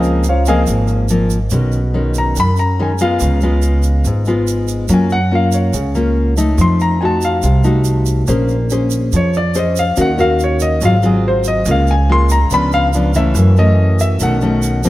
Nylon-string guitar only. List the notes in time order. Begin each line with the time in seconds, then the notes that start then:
Already playing: C#3 F3 A#3 C4
0.47 F3 A#3 C4
0.68 G#2
1.10 F3 A#3 C4
1.52 B2 D#3 G#3 C#4
1.94 D#3 G#3 C#4
2.37 F#2
2.79 D#3 G#3 C#4
3.01 G#3 B3 F4
3.22 C#3
3.43 G#3 B3 F4
4.06 G#2
4.27 G#3 B3 F4
4.90 F#3 A#3 C#4 F4
5.31 A#3 C#4 F4
5.74 C#3
5.95 A#3 C#4 F4
6.37 A3 D#4
6.59 F3
7.01 A3 D#4 F#4
7.43 C3
7.64 A3 D#4 F#4
8.28 A#3 C#4 G#4 C5
8.71 C#4 G#4 C5
9.14 F3
9.55 C#4 G#4 C5
9.97 D#3 C#4 F#4 A#4
10.18 C#4 F#4 A#4
10.82 G#2 F#3 C4 F4
11.03 F#3 C4 F4
11.67 C#3 G#3 A#3 F4
12.09 G#3 A#3 F4
12.51 C#3 F3 B3 D4
12.95 F3 B3 D4
13.15 E3 A3 C#4
13.36 F#2
13.57 E3 A3 C#4
14.21 B2 D#3 A3 C#4
14.42 D#3 A3 C#4
14.85 F3 A#3 C4